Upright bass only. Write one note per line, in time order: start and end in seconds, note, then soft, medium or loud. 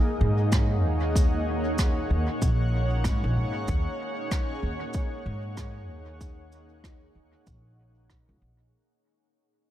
0.21 0.84 G#2 medium
0.84 2.08 D#2 medium
2.10 2.27 D#2 medium
2.42 3.05 A#1 medium
3.05 3.22 G#2 medium
3.24 3.38 A#1 medium
3.36 3.65 G#2 medium
3.68 3.85 D#2 medium
4.63 4.79 D#2 medium
5.26 5.89 G#2 medium
5.89 7.13 D#2 medium
7.15 7.32 D#2 medium
7.47 8.28 A#1 medium
8.29 8.40 C#2 medium
8.42 8.70 A#1 medium